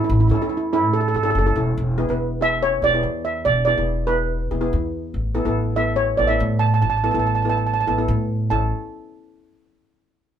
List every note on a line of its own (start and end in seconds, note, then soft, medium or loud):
0.00 0.14 C#4 medium
0.00 0.14 E4 medium
0.00 0.14 A4 medium
0.04 0.11 E4 medium
0.09 0.29 A1 loud
0.09 0.19 E4 medium
0.20 0.26 E4 medium
0.28 0.83 E2 medium
0.28 0.37 C#4 medium
0.28 0.34 E4 medium
0.28 0.37 E4 medium
0.28 0.37 A4 loud
0.35 0.41 E4 medium
0.42 0.60 C#4 medium
0.42 0.60 E4 medium
0.42 0.48 E4 medium
0.42 0.60 A4 medium
0.49 0.56 E4 medium
0.57 0.64 E4 medium
0.73 1.04 C#4 medium
0.73 1.04 E4 medium
0.73 0.92 E4 loud
0.73 1.04 A4 medium
0.83 1.13 A2 medium
0.93 0.99 A4 medium
1.01 1.07 A4 medium
1.08 1.15 A4 medium
1.14 1.33 G#1 medium
1.14 1.22 A4 medium
1.23 1.38 C#4 medium
1.23 1.37 E4 medium
1.23 1.29 A4 medium
1.23 1.37 A4 medium
1.30 1.38 A4 medium
1.35 1.54 F#1 medium
1.35 1.45 A4 medium
1.46 1.52 C#4 medium
1.46 1.52 E4 medium
1.46 1.52 A4 medium
1.46 1.53 A4 medium
1.56 1.75 E1 medium
1.56 1.78 C#4 medium
1.56 1.78 E4 medium
1.56 1.78 A4 medium
1.77 2.07 E1 medium
1.98 2.04 B3 medium
1.98 2.05 E4 medium
1.98 2.04 G#4 loud
2.09 2.79 E1 medium
2.09 2.28 B3 medium
2.09 2.28 E4 medium
2.09 2.28 B4 medium
2.41 2.66 B3 medium
2.41 2.66 E4 medium
2.41 2.66 G#4 medium
2.41 2.63 E5 loud
2.63 2.84 C#5 medium
2.82 3.02 E1 medium
2.82 2.89 B3 medium
2.82 2.89 E4 medium
2.82 2.90 G#4 medium
2.82 3.22 D5 loud
2.94 3.38 B3 medium
2.94 3.38 E4 medium
2.94 3.38 G#4 medium
3.03 3.43 E2 medium
3.25 3.46 E5 medium
3.45 3.76 E1 medium
3.45 3.55 D5 loud
3.65 3.73 B3 medium
3.65 3.73 E4 medium
3.65 3.73 G#4 medium
3.65 4.09 D5 medium
3.78 4.47 E1 medium
3.78 3.96 B3 medium
3.78 3.97 E4 medium
3.78 3.96 G#4 medium
4.07 4.34 B3 medium
4.07 4.34 E4 medium
4.07 4.34 G#4 medium
4.07 4.88 B4 medium
4.51 4.71 E1 medium
4.51 4.57 B3 medium
4.51 4.58 E4 medium
4.51 4.57 G#4 medium
4.61 5.05 B3 medium
4.61 5.05 E4 medium
4.61 5.05 G#4 medium
4.73 5.12 E2 medium
5.14 5.44 A1 medium
5.35 5.41 B3 medium
5.35 5.41 E4 medium
5.35 5.41 A4 loud
5.45 6.15 A1 medium
5.45 5.65 B3 medium
5.45 5.65 E4 medium
5.45 5.65 A4 loud
5.76 6.02 B3 medium
5.76 6.02 E4 medium
5.76 6.03 A4 medium
5.76 5.96 E5 medium
5.96 6.17 C#5 medium
6.17 6.39 A1 medium
6.17 6.25 B3 medium
6.17 6.26 E4 medium
6.17 6.26 A4 medium
6.17 6.29 D5 medium
6.27 6.74 B3 medium
6.27 6.74 E4 medium
6.27 6.74 A4 medium
6.27 6.61 E5 medium
6.40 6.80 A2 loud
6.59 6.65 A5 medium
6.67 6.73 A5 medium
6.74 6.80 A5 medium
6.82 7.12 A1 medium
6.82 6.88 A5 medium
6.90 6.96 A5 medium
6.97 7.03 A5 medium
7.04 7.10 B3 medium
7.04 7.10 E4 medium
7.04 7.10 A4 medium
7.04 7.10 A5 medium
7.11 7.84 A1 medium
7.11 7.33 B3 medium
7.11 7.33 E4 medium
7.11 7.33 A4 medium
7.11 7.18 A5 medium
7.20 7.25 A5 medium
7.27 7.34 A5 medium
7.35 7.41 A5 medium
7.42 7.71 B3 medium
7.42 7.71 E4 medium
7.42 7.71 A4 medium
7.42 7.48 A5 medium
7.50 7.56 A5 medium
7.57 7.65 A5 medium
7.67 7.72 A5 medium
7.74 7.79 A5 medium
7.80 7.87 A5 medium
7.87 8.08 A1 medium
7.87 7.94 B3 medium
7.87 7.94 E4 medium
7.87 7.94 A4 medium
7.87 7.95 A5 medium
7.98 8.42 B3 medium
7.98 8.42 E4 medium
7.98 8.43 A4 medium
8.08 8.48 A2 loud
8.50 8.70 A1 medium
8.50 8.71 C#4 medium
8.50 8.71 E4 medium
8.50 8.71 A4 medium
8.50 8.70 A5 medium